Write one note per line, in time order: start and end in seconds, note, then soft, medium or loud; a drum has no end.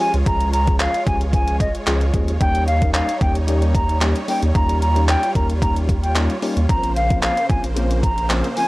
0.00 0.16 F3 medium
0.00 0.16 G#3 medium
0.00 2.37 G#3 medium
0.00 0.17 C#4 medium
0.00 0.17 F4 medium
0.00 2.37 F4 medium
0.00 0.17 G4 medium
0.00 6.65 C#5 medium
0.00 0.12 G#5 medium
0.00 open hi-hat medium
0.14 0.23 C#2 loud
0.14 closed hi-hat medium
0.26 0.88 C#2 loud
0.26 0.51 F3 medium
0.26 0.51 G#3 medium
0.26 0.51 C#4 medium
0.26 0.51 F4 medium
0.26 0.51 G#4 medium
0.26 0.50 A#5 loud
0.26 kick loud
0.26 closed hi-hat medium
0.41 closed hi-hat medium
0.53 0.77 A#5 medium
0.53 closed hi-hat medium
0.67 0.92 F3 medium
0.67 0.92 G#3 medium
0.67 0.92 C#4 medium
0.67 0.92 F4 medium
0.67 0.92 G#4 medium
0.67 kick medium
0.67 closed hi-hat medium
0.80 1.03 F5 medium
0.80 clap loud
0.80 clap medium
0.80 closed hi-hat medium
0.94 closed hi-hat medium
1.07 1.68 C#2 medium
1.07 1.24 F3 medium
1.07 1.24 G#3 medium
1.07 1.24 C#4 medium
1.07 1.24 F4 medium
1.07 1.24 G4 medium
1.07 1.19 G#5 medium
1.07 kick loud
1.07 closed hi-hat medium
1.21 closed hi-hat medium
1.33 1.66 F3 medium
1.33 1.66 G#3 medium
1.33 1.67 C#4 medium
1.33 1.67 F4 medium
1.33 1.67 G#4 medium
1.33 1.57 G#5 medium
1.33 kick loud
1.33 closed hi-hat loud
1.48 closed hi-hat medium
1.60 1.73 D#5 medium
1.60 kick medium
1.60 closed hi-hat medium
1.75 closed hi-hat medium
1.87 2.11 C#2 medium
1.87 2.04 F3 medium
1.87 2.04 G#3 medium
1.87 2.04 C#4 medium
1.87 2.04 F4 medium
1.87 2.04 G#4 loud
1.87 clap medium
1.87 clap loud
1.87 closed hi-hat loud
2.01 closed hi-hat medium
2.14 2.38 D#2 medium
2.14 2.31 F3 medium
2.14 2.31 G#3 medium
2.14 2.31 C#4 medium
2.14 2.31 F4 medium
2.14 2.31 G#4 loud
2.14 kick medium
2.14 closed hi-hat medium
2.28 closed hi-hat soft
2.40 3.02 D#2 loud
2.40 2.65 G3 medium
2.40 6.65 G3 medium
2.40 2.65 A#3 medium
2.40 2.65 C#4 medium
2.40 2.65 D#4 medium
2.40 4.53 D#4 medium
2.40 2.65 G4 medium
2.40 2.64 G5 loud
2.40 kick loud
2.40 closed hi-hat medium
2.55 closed hi-hat medium
2.67 2.91 F5 medium
2.67 closed hi-hat medium
2.81 3.06 G3 medium
2.81 3.06 A#3 medium
2.81 3.06 C#4 medium
2.81 3.06 D#4 medium
2.81 3.06 A#4 medium
2.81 kick medium
2.81 closed hi-hat medium
2.94 3.18 F5 medium
2.94 clap loud
2.94 clap medium
2.94 closed hi-hat medium
3.09 closed hi-hat medium
3.21 4.14 D#2 medium
3.21 3.38 G3 medium
3.21 3.38 A#3 medium
3.21 3.38 C#4 medium
3.21 3.38 D#4 medium
3.21 3.38 G4 medium
3.21 3.33 G5 medium
3.21 kick loud
3.21 closed hi-hat medium
3.35 closed hi-hat medium
3.48 3.81 G3 medium
3.48 3.81 A#3 medium
3.48 3.81 C#4 medium
3.48 3.81 D#4 medium
3.48 3.81 G4 loud
3.48 closed hi-hat medium
3.62 closed hi-hat medium
3.75 3.98 A#5 medium
3.75 kick loud
3.75 closed hi-hat medium
3.89 closed hi-hat medium
4.01 4.18 G3 medium
4.01 4.18 A#3 medium
4.01 4.18 C#4 medium
4.01 4.18 D#4 medium
4.01 4.18 G4 medium
4.01 clap medium
4.01 clap loud
4.01 closed hi-hat loud
4.16 closed hi-hat medium
4.28 4.45 G3 medium
4.28 4.45 A#3 medium
4.28 4.45 C#4 medium
4.28 4.45 D#4 medium
4.28 4.45 G4 medium
4.28 4.41 G5 medium
4.28 open hi-hat medium
4.42 4.52 D#2 loud
4.42 closed hi-hat soft
4.55 5.16 D#2 loud
4.55 4.79 G3 medium
4.55 4.79 A#3 medium
4.55 4.80 C#4 medium
4.55 4.80 D#4 medium
4.55 6.67 F4 medium
4.55 4.80 G4 medium
4.55 4.78 A#5 loud
4.55 kick loud
4.55 closed hi-hat medium
4.69 closed hi-hat medium
4.82 5.05 A#5 medium
4.82 closed hi-hat medium
4.96 5.20 G3 medium
4.96 5.20 A#3 medium
4.96 5.20 C#4 medium
4.96 5.20 D#4 medium
4.96 5.20 G4 medium
4.96 closed hi-hat medium
5.08 5.32 G5 medium
5.08 clap medium
5.08 clap loud
5.08 closed hi-hat medium
5.23 closed hi-hat medium
5.35 6.28 D#2 medium
5.35 5.52 G3 medium
5.35 5.52 A#3 medium
5.35 5.52 C#4 medium
5.35 5.52 D#4 medium
5.35 5.52 A#4 medium
5.35 5.48 A#5 medium
5.35 kick loud
5.35 closed hi-hat medium
5.50 closed hi-hat medium
5.62 5.95 G3 medium
5.62 5.95 A#3 medium
5.62 5.95 C#4 medium
5.62 5.95 D#4 medium
5.62 5.95 G4 medium
5.62 5.74 A#5 medium
5.62 kick loud
5.62 closed hi-hat loud
5.76 closed hi-hat medium
5.89 kick medium
5.89 closed hi-hat medium
6.03 6.14 G5 medium
6.03 closed hi-hat medium
6.15 6.32 G3 medium
6.15 6.33 A#3 medium
6.15 6.33 C#4 medium
6.15 6.33 D#4 medium
6.15 6.33 F4 medium
6.15 clap medium
6.15 clap loud
6.15 closed hi-hat loud
6.30 closed hi-hat medium
6.42 6.59 G3 medium
6.42 6.59 A#3 medium
6.42 6.59 C#4 medium
6.42 6.59 D#4 medium
6.42 6.60 G4 loud
6.42 open hi-hat medium
6.57 6.66 D#2 loud
6.57 closed hi-hat soft
6.69 7.31 A#1 loud
6.69 8.68 C#3 medium
6.69 6.94 F3 medium
6.69 6.94 A#3 medium
6.69 8.68 A#3 medium
6.69 6.94 C4 medium
6.69 6.94 C#4 medium
6.69 6.94 F4 medium
6.69 8.68 C5 medium
6.69 6.93 A#5 loud
6.69 kick loud
6.69 closed hi-hat medium
6.83 closed hi-hat medium
6.96 7.19 F5 medium
6.96 closed hi-hat medium
7.10 7.34 F3 medium
7.10 7.35 A#3 medium
7.10 7.35 C4 medium
7.10 7.35 C#4 medium
7.10 7.35 F4 medium
7.10 kick medium
7.10 closed hi-hat medium
7.23 7.46 F5 medium
7.23 clap loud
7.23 clap medium
7.23 closed hi-hat medium
7.37 closed hi-hat medium
7.49 8.42 A#1 medium
7.49 7.66 F3 medium
7.49 7.66 A#3 medium
7.49 7.67 C4 medium
7.49 7.67 C#4 medium
7.49 7.67 F4 medium
7.49 7.62 G#5 medium
7.49 kick loud
7.49 closed hi-hat medium
7.64 closed hi-hat medium
7.76 8.09 F3 loud
7.76 8.09 A#3 medium
7.76 8.09 C4 medium
7.76 8.09 C#4 medium
7.76 8.10 F4 loud
7.76 closed hi-hat loud
7.91 closed hi-hat medium
8.03 8.27 A#5 medium
8.03 kick medium
8.03 closed hi-hat medium
8.18 closed hi-hat medium
8.30 8.47 F3 medium
8.30 8.47 A#3 medium
8.30 8.47 C4 medium
8.30 8.47 C#4 medium
8.30 8.47 F4 medium
8.30 clap medium
8.30 clap loud
8.30 closed hi-hat loud
8.44 closed hi-hat medium
8.57 8.68 F3 medium
8.57 8.68 A#3 medium
8.57 8.68 C4 medium
8.57 8.68 C#4 medium
8.57 8.68 F4 medium
8.57 8.68 G#5 medium
8.57 open hi-hat medium